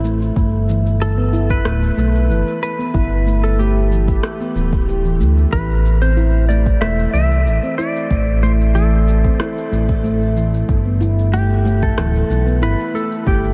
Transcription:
0.00 0.31 A1 medium
0.04 0.14 A3 medium
0.04 shaker medium
0.22 shaker soft
0.36 1.60 G1 loud
0.36 0.53 A3 medium
0.36 kick loud
0.36 shaker soft
0.69 0.85 E3 medium
0.69 shaker medium
0.86 shaker soft
1.01 1.47 A4 medium
1.01 shaker soft
1.18 1.32 B3 medium
1.33 1.49 E4 loud
1.33 shaker medium
1.50 2.62 B4 loud
1.50 kick loud
1.50 shaker soft
1.65 1.91 D1 loud
1.65 1.75 A3 medium
1.65 cross-stick medium
1.65 shaker soft
1.83 shaker soft
1.97 2.31 B1 medium
1.97 2.14 A3 loud
1.97 shaker medium
2.15 shaker soft
2.29 2.43 G1 medium
2.29 2.46 E3 medium
2.29 shaker soft
2.48 shaker soft
2.63 3.46 B4 loud
2.63 shaker medium
2.79 2.93 B3 medium
2.79 shaker soft
2.94 4.18 G1 medium
2.94 3.10 E4 loud
2.94 kick loud
2.94 shaker soft
3.26 3.36 A3 medium
3.26 shaker medium
3.44 3.59 A4 medium
3.44 shaker soft
3.58 3.75 A3 medium
3.58 5.16 G4 medium
3.58 shaker soft
3.91 4.07 E3 medium
3.91 shaker medium
4.08 kick loud
4.08 shaker soft
4.23 cross-stick medium
4.23 shaker soft
4.40 4.54 B3 medium
4.40 shaker soft
4.55 5.21 D1 medium
4.55 4.72 E3 medium
4.55 shaker medium
4.73 kick loud
4.73 shaker soft
4.88 5.04 G4 medium
4.88 shaker soft
5.05 5.19 E3 medium
5.05 shaker soft
5.20 5.46 D2 medium
5.20 5.35 A3 medium
5.20 shaker medium
5.38 shaker soft
5.53 6.76 A1 loud
5.53 5.69 E3 medium
5.53 6.01 B4 medium
5.53 kick loud
5.53 shaker soft
5.86 shaker medium
6.02 6.16 C4 medium
6.02 6.48 C5 loud
6.02 shaker soft
6.17 6.33 E4 medium
6.17 shaker soft
6.49 6.59 A3 medium
6.49 6.82 D5 medium
6.49 shaker medium
6.66 kick loud
6.66 shaker soft
6.81 7.07 E1 loud
6.81 6.98 A3 loud
6.81 7.11 E5 loud
6.81 cross-stick medium
6.81 shaker soft
6.99 shaker soft
7.13 7.48 C2 loud
7.13 7.30 E3 medium
7.13 7.78 E5 loud
7.13 shaker medium
7.32 shaker soft
7.46 7.59 A1 medium
7.46 shaker soft
7.63 7.77 C4 medium
7.63 shaker soft
7.78 7.94 E4 medium
7.78 8.43 D5 loud
7.78 shaker medium
7.96 shaker soft
8.11 9.34 A1 loud
8.11 8.20 A3 medium
8.11 kick loud
8.11 shaker soft
8.43 8.59 A3 loud
8.43 8.52 C5 medium
8.43 shaker medium
8.61 shaker soft
8.75 8.91 E3 medium
8.75 10.32 A4 medium
8.75 shaker soft
9.08 shaker medium
9.24 9.38 C4 medium
9.24 kick loud
9.24 shaker soft
9.40 9.56 E4 loud
9.40 cross-stick medium
9.40 shaker soft
9.58 shaker soft
9.71 10.63 A1 medium
9.71 9.81 A3 medium
9.71 shaker medium
9.89 kick loud
9.89 shaker soft
10.04 10.20 A3 loud
10.04 shaker soft
10.22 shaker soft
10.36 10.53 E3 medium
10.36 shaker medium
10.54 shaker soft
10.69 11.93 G1 loud
10.69 kick loud
10.69 shaker soft
10.86 10.99 B3 medium
11.01 11.17 E4 loud
11.01 shaker medium
11.19 shaker soft
11.33 11.43 A3 medium
11.33 11.84 G4 medium
11.33 shaker soft
11.65 11.82 A3 loud
11.65 shaker medium
11.83 12.58 A4 loud
11.83 kick loud
11.83 shaker soft
11.98 12.23 D1 loud
11.98 12.14 E3 medium
11.98 cross-stick medium
11.98 shaker soft
12.15 shaker soft
12.30 12.63 B1 loud
12.30 shaker medium
12.47 12.61 B3 medium
12.47 shaker soft
12.62 12.75 G1 medium
12.62 12.78 E4 loud
12.62 12.96 B4 loud
12.62 shaker soft
12.80 shaker soft
12.94 13.04 A3 medium
12.94 13.27 A4 loud
12.94 shaker medium
13.12 shaker soft
13.26 13.54 G1 loud
13.26 13.43 A3 medium
13.26 13.54 G4 medium
13.26 kick loud
13.26 shaker soft
13.44 shaker soft

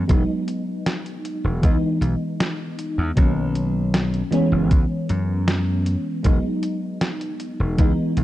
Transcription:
0.00 0.11 E3 medium
0.00 0.09 G#3 medium
0.00 0.10 B3 medium
0.00 0.11 C#4 loud
0.08 0.22 E1 loud
0.08 1.55 F#3 medium
0.08 1.55 G#3 medium
0.08 1.56 B3 medium
0.08 1.56 D#4 medium
0.08 kick loud
0.08 closed hi-hat medium
0.48 closed hi-hat medium
0.86 snare loud
0.86 closed hi-hat medium
1.06 closed hi-hat soft
1.25 closed hi-hat medium
1.44 1.63 E1 medium
1.62 1.76 C#2 medium
1.62 3.09 E3 medium
1.62 3.09 G#3 medium
1.62 3.10 B3 medium
1.62 3.10 D#4 medium
1.62 kick loud
1.62 closed hi-hat medium
2.01 2.14 B1 loud
2.01 closed hi-hat medium
2.40 snare loud
2.40 closed hi-hat medium
2.79 closed hi-hat medium
2.98 3.10 E2 medium
3.16 4.21 B1 medium
3.16 4.24 D#3 medium
3.16 4.25 F#3 medium
3.16 4.25 A#3 medium
3.16 4.26 C#4 medium
3.16 kick loud
3.16 closed hi-hat medium
3.55 closed hi-hat medium
3.94 snare loud
3.94 closed hi-hat medium
4.14 closed hi-hat soft
4.31 6.16 E3 loud
4.31 6.17 G#3 medium
4.31 6.18 B3 medium
4.31 6.18 C#4 loud
4.31 closed hi-hat medium
4.52 4.71 F#1 medium
4.71 4.84 C#2 medium
4.71 kick loud
4.71 closed hi-hat medium
5.09 5.95 F#2 medium
5.09 closed hi-hat medium
5.48 snare loud
5.48 closed hi-hat medium
5.86 closed hi-hat medium
6.23 6.38 E1 loud
6.23 7.70 F#3 medium
6.23 7.71 G#3 medium
6.23 7.71 B3 medium
6.23 7.72 D#4 medium
6.23 kick loud
6.23 closed hi-hat medium
6.63 closed hi-hat medium
7.01 snare loud
7.01 closed hi-hat medium
7.21 closed hi-hat soft
7.40 closed hi-hat medium
7.60 7.79 E1 medium
7.77 7.91 C#2 medium
7.77 8.24 E3 medium
7.77 8.24 G#3 medium
7.77 8.24 B3 medium
7.77 8.24 D#4 medium
7.77 kick loud
7.77 closed hi-hat medium
8.17 8.24 B1 loud
8.17 closed hi-hat medium

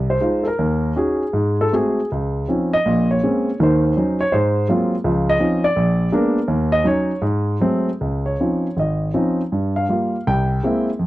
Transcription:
0.00 0.17 C2 medium
0.10 0.44 C5 medium
0.21 0.47 G#3 medium
0.21 0.47 D#4 medium
0.21 0.48 F4 medium
0.43 0.45 A4 medium
0.47 0.94 A#4 medium
0.59 0.91 D#2 medium
0.96 1.22 C#4 soft
0.96 1.22 D#4 soft
0.96 1.22 F#4 medium
0.96 1.56 G#4 medium
1.33 1.67 G#2 medium
1.61 1.73 A4 medium
1.72 1.99 G#3 soft
1.72 1.99 A3 soft
1.72 1.99 C4 soft
1.72 1.99 F#4 medium
1.72 2.10 G#4 medium
2.12 2.44 C#2 medium
2.48 2.74 F3 soft
2.48 2.74 C4 soft
2.48 2.75 C#4 soft
2.48 2.75 D#4 soft
2.73 3.08 D#5 medium
2.86 3.18 A#1 medium
2.86 3.18 A#2 medium
3.11 3.57 C#5 medium
3.23 3.49 G#3 soft
3.23 3.49 A#3 soft
3.23 3.49 C4 soft
3.23 3.49 C#4 medium
3.60 3.92 D#2 medium
3.60 3.92 D#3 medium
3.60 4.18 C5 medium
3.97 4.22 F#3 medium
3.97 4.22 C#4 soft
3.97 4.22 D#4 medium
4.21 4.33 C#5 medium
4.32 4.65 G#2 medium
4.32 4.66 C5 medium
4.68 4.94 F#3 medium
4.68 4.94 G#3 medium
4.68 4.94 A#3 soft
4.68 4.94 C4 soft
4.68 4.94 F4 medium
5.04 5.36 C#2 medium
5.04 5.36 F3 medium
5.29 5.62 D#5 medium
5.40 5.65 F3 medium
5.40 5.65 C4 soft
5.40 5.65 C#4 soft
5.40 5.65 D#4 medium
5.64 6.10 D5 medium
5.76 6.08 A#1 medium
6.12 6.38 G#3 medium
6.12 6.38 A#3 soft
6.12 6.38 B3 medium
6.12 6.38 D4 medium
6.12 6.69 A#4 medium
6.48 6.80 D#2 medium
6.72 6.85 D#5 medium
6.84 7.10 F#3 medium
6.84 7.11 C#4 soft
6.84 7.11 D#4 medium
6.84 7.21 C#5 medium
7.22 7.56 G#2 medium
7.60 7.88 F#3 medium
7.60 7.89 G#3 medium
7.60 7.89 A3 soft
7.60 7.89 C4 medium
8.01 8.34 C#2 medium
8.26 8.74 C#5 medium
8.40 8.66 F3 soft
8.40 8.66 C4 soft
8.40 8.66 C#4 soft
8.40 8.66 D#4 soft
8.77 9.09 G#1 medium
8.77 9.36 D#5 medium
9.14 9.40 F3 medium
9.14 9.40 C4 soft
9.14 9.40 C#4 soft
9.14 9.41 D#4 medium
9.52 9.84 G2 medium
9.76 10.23 F5 medium
9.89 10.15 G3 soft
9.89 10.15 A#3 soft
9.89 10.15 F4 medium
10.27 10.59 C2 medium
10.27 10.84 G5 medium
10.64 10.89 G#3 medium
10.64 10.89 A#3 medium
10.64 10.89 C4 medium
10.64 10.89 E4 medium
10.99 11.07 F2 medium

